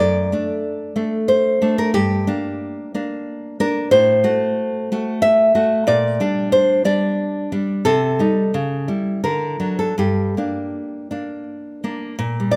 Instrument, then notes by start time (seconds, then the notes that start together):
nylon-string guitar
0.00 F#2 D5
0.32 A3 D4
0.96 A3 D4
1.28 C5
1.62 A3 D4
1.78 A#4
1.94 G2 G4
2.27 A#3 D4
2.94 A#3 D4
3.60 A#3 D4 A#4
3.91 A2 C5
4.24 A3 F#4
4.92 A3 F#4
5.22 E5
5.55 A3 F#4
5.87 A#2 D5
6.20 G3 D4
6.52 C5
6.85 G3 D4 D5
7.52 G3 D4
7.85 C3 A4
8.19 G3 D#4
8.54 C#3
8.88 G3 E4
9.24 D3 A#4
9.60 F#3 D4
9.79 A4
9.98 G2 G4
10.37 A#3 D4
11.11 A#3 D4
11.84 A#3 D4
12.19 A#2
12.40 G3
12.51 D5